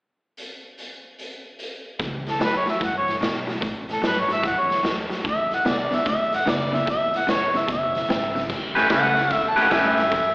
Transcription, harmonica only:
2.30 2.41 A4 medium
2.44 2.55 B4 medium
2.57 2.68 C#5 medium
2.69 2.81 E5 medium
2.84 2.96 F#5 medium
2.97 3.17 C#5 medium
3.92 4.04 A4 medium
4.06 4.21 B4 medium
4.19 4.31 C#5 medium
4.33 4.48 E5 medium
4.46 4.61 F#5 medium
4.60 4.80 C#5 medium
5.28 5.52 E5 medium
5.54 5.70 F#5 medium
5.69 5.96 D5 medium
5.95 6.07 E5 medium
6.09 6.36 E5 medium
6.35 6.51 F#5 medium
6.49 6.77 D5 medium
6.75 6.88 E5 medium
6.90 7.19 E5 medium
7.17 7.32 F#5 medium
7.30 7.59 C#5 medium
7.58 7.70 E5 medium
7.72 8.49 E5 medium
8.93 9.44 F#5 loud
9.49 9.59 A5 medium
9.62 9.73 F#5 medium
9.74 9.86 E5 medium
9.87 10.35 E5 medium

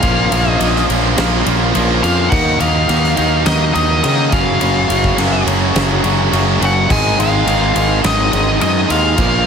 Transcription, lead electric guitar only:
0.00 0.51 F5 medium
0.51 0.85 D#5 medium
2.03 2.30 F5 loud
2.30 2.60 F#5 loud
2.60 3.42 F5 loud
3.46 3.73 D#5 loud
3.74 4.03 D#5 medium
4.04 4.30 D#5 medium
4.33 5.43 F5 medium
6.65 6.89 F#5 medium
6.92 7.17 G#5 loud
7.21 8.01 F5 loud
8.06 8.31 D#5 loud
8.32 8.58 D#5 medium
8.62 8.90 D#5 medium
8.91 9.47 F5 medium

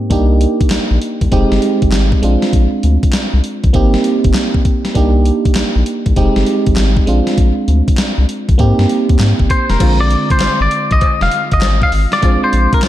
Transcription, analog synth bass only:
0.10 0.46 C2 loud
0.71 0.79 A#1 medium
0.91 0.98 A#1 medium
1.21 1.29 C2 medium
1.32 1.46 F1 loud
1.51 1.59 G1 medium
1.82 1.90 G#1 medium
1.92 2.14 G#1 medium
2.23 2.37 A#1 loud
2.53 2.67 A#1 loud
2.84 2.98 D2 medium
3.34 3.41 C2 medium
3.64 3.71 A#1 medium
3.74 3.96 G#1 loud
4.25 4.32 G1 loud
4.95 5.31 C2 loud
5.56 5.64 A#1 soft
5.76 5.83 A#1 medium
6.06 6.14 C2 medium
6.17 6.31 F1 loud
6.36 6.44 G1 medium
6.67 6.74 G#1 medium
6.77 6.99 G#1 loud
7.07 7.22 A#1 loud
7.38 7.52 A#1 loud
7.68 7.82 D2 medium
8.18 8.26 C2 medium
8.49 8.56 A#1 medium
8.59 8.73 G#2 loud
8.79 8.86 G2 medium
9.10 9.17 D#2 medium
9.20 9.34 G#2 loud
9.40 9.47 G#1 medium
9.70 9.77 F1 loud
9.80 10.16 A#1 loud
10.41 10.49 G#1 medium
10.60 10.68 G#1 medium
10.91 10.98 A#1 medium
11.21 11.29 F1 medium
11.52 11.59 G1 medium
11.62 11.84 G#1 loud
11.92 12.06 G#1 medium
12.23 12.37 A#1 loud
12.53 12.67 A#1 loud

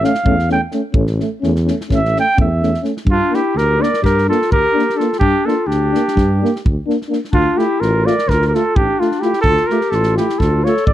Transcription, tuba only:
0.25 0.62 E2 medium
0.93 1.20 A1 loud
1.43 1.69 E2 loud
1.89 2.16 A1 medium
2.38 2.75 E2 medium
3.05 3.20 G2 medium
3.55 3.81 D2 medium
4.03 4.29 G2 medium
4.51 4.64 D2 medium
5.20 5.33 G2 medium
5.67 5.93 D2 medium
6.16 6.42 G2 loud
6.65 6.78 D2 medium
7.33 7.46 D2 medium
7.81 8.07 A1 loud
8.28 8.54 D2 medium
8.75 8.88 A1 medium
9.44 9.57 D2 medium
9.92 10.18 A1 loud
10.40 10.66 D2 medium
10.87 10.93 A1 medium

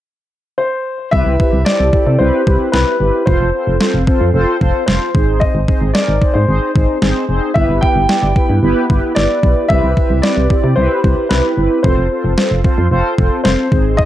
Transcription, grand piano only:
0.58 1.08 C5 medium
1.11 1.62 E5 loud
1.65 2.21 D5 medium
2.19 2.74 C5 medium
2.72 3.28 B4 medium
3.26 4.30 C5 medium
4.86 5.42 C5 medium
5.40 5.90 D#5 medium
5.94 6.36 D5 medium
6.34 7.59 C5 medium
7.54 7.83 E5 loud
7.81 8.58 G5 loud
9.15 9.71 D5 medium
9.68 10.24 E5 loud
10.22 10.78 D5 medium
10.76 11.26 C5 medium
11.29 11.85 B4 medium
11.83 12.87 C5 medium
13.44 13.94 C5 medium
13.97 14.05 D#5 loud

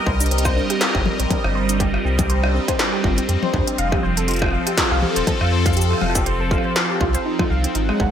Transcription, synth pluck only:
0.07 0.16 C5 loud
0.20 0.28 D4 medium
0.31 0.41 C4 medium
0.45 0.53 C5 loud
0.56 0.66 D4 medium
0.70 0.78 G4 loud
0.81 0.87 F4 medium
0.95 1.02 C4 loud
1.06 1.15 G4 medium
1.20 1.27 C5 loud
1.31 1.40 D4 medium
1.44 1.52 C4 medium
1.55 1.65 C5 loud
1.69 1.77 D4 medium
1.80 1.90 G4 loud
1.94 1.99 F4 medium
2.05 2.15 C4 loud
2.19 2.26 G4 medium
2.30 2.39 C5 loud
2.43 2.51 D4 medium
2.54 2.64 C4 medium
2.68 2.76 C5 loud
2.79 2.89 D4 medium
2.93 3.01 G4 loud
3.04 3.10 F4 medium
3.18 3.26 C4 loud
3.29 3.38 G4 medium
3.43 3.50 C5 loud
3.54 3.63 D4 medium
3.67 3.75 C4 medium
3.78 3.88 F5 loud
3.92 4.00 G4 medium
4.03 4.13 C5 loud
4.17 4.22 A4 medium
4.28 4.38 F4 loud
4.42 4.49 C5 medium
4.53 4.62 F5 loud
4.67 4.74 G4 medium
4.78 4.87 F4 medium
4.91 4.99 F5 loud
5.02 5.12 G4 medium
5.16 5.24 C5 loud
5.27 5.33 A4 medium
5.41 5.49 F4 loud
5.52 5.62 C5 medium
5.66 5.73 F5 medium
5.77 5.86 G4 medium
5.91 5.98 F4 medium
6.02 6.11 F5 loud
6.15 6.23 G4 medium
6.26 6.36 C5 loud
6.40 6.45 A4 medium
6.51 6.61 F4 loud
6.65 6.73 C5 medium
6.76 6.86 F5 loud
6.90 6.97 G4 medium
7.01 7.14 F4 loud
7.15 7.19 C5 loud
7.25 7.35 D#4 medium
7.39 7.47 F4 medium
7.50 7.60 F5 medium
7.64 7.75 C4 loud
7.75 7.85 D#4 medium
7.89 7.97 G#3 loud
8.00 8.10 A#3 medium

